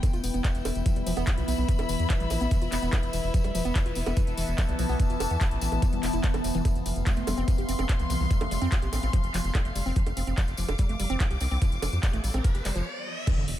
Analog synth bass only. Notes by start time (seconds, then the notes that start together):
0.13 E1
0.24 E1
0.34 E1
0.55 E1
0.65 E1
0.75 E1
0.96 E1
1.06 E1
1.17 E1
1.38 B1
1.48 B1
1.58 B1
1.79 E1
1.89 E1
2.00 E2
2.20 A1
2.31 A1
2.41 A1
2.62 E1
2.72 E1
2.82 E1
3.03 E1
3.13 E1
3.24 E1
3.44 E1
3.55 E1
3.65 E1
3.86 E1
3.96 E1
4.06 E1
4.27 E1
4.38 E1
4.48 E1
4.69 B1
4.79 B1
4.89 B1
5.10 E1
5.20 E1
5.31 E2
5.51 A1
5.62 A1
5.72 A1
5.93 E1
6.03 E1
6.13 E1
6.34 E1
6.44 E1
6.55 E1
6.75 F1
6.86 F1
6.96 F1
7.17 F1
7.27 F1
7.37 F1
7.58 F1
7.69 F1
7.79 F1
8.00 C2
8.10 C2
8.20 C2
8.41 F1
8.51 F1
8.62 F2
8.82 A1
8.93 A1
9.03 A1
9.24 F1
9.34 F1
9.44 F1
9.65 F1
9.75 F1
9.86 F1
10.07 F1
10.17 F1
10.27 F1
10.48 F1
10.58 F1
10.69 F1
10.89 F1
11.00 F1
11.10 F1
11.31 C2
11.41 C2
11.51 C2
11.72 F1
11.82 F1
11.93 F2
12.13 A1
12.24 A1
12.34 A1
12.55 F1
12.65 F1
12.75 F1
13.38 E1
13.48 E1